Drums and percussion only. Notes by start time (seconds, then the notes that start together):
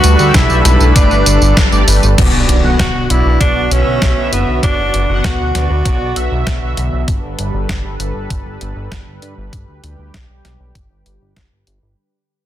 0.04 closed hi-hat, tambourine
0.19 tambourine
0.34 kick, snare, closed hi-hat, tambourine
0.50 tambourine
0.65 snare, closed hi-hat, tambourine
0.80 tambourine
0.96 kick, closed hi-hat, tambourine
1.11 tambourine
1.26 closed hi-hat, tambourine
1.42 tambourine
1.57 kick, snare, closed hi-hat, tambourine
1.72 tambourine
1.88 open hi-hat, tambourine
2.03 tambourine
2.18 kick, closed hi-hat, crash
2.49 closed hi-hat
2.79 kick, snare, closed hi-hat
3.10 closed hi-hat
3.41 kick, closed hi-hat
3.71 closed hi-hat
4.02 kick, snare, closed hi-hat
4.33 closed hi-hat
4.63 kick, closed hi-hat
4.94 closed hi-hat
5.24 kick, snare, closed hi-hat
5.55 snare, closed hi-hat
5.85 kick, closed hi-hat
6.16 closed hi-hat
6.47 kick, snare, closed hi-hat
6.77 closed hi-hat
7.08 kick, closed hi-hat
7.39 closed hi-hat
7.69 kick, snare, closed hi-hat
8.00 closed hi-hat
8.30 kick, closed hi-hat
8.61 closed hi-hat
8.92 kick, snare, closed hi-hat
9.22 closed hi-hat
9.53 kick, closed hi-hat
9.84 closed hi-hat
10.14 kick, snare, closed hi-hat
10.45 snare, closed hi-hat
10.75 kick, closed hi-hat
11.06 closed hi-hat
11.36 kick, snare, closed hi-hat
11.67 closed hi-hat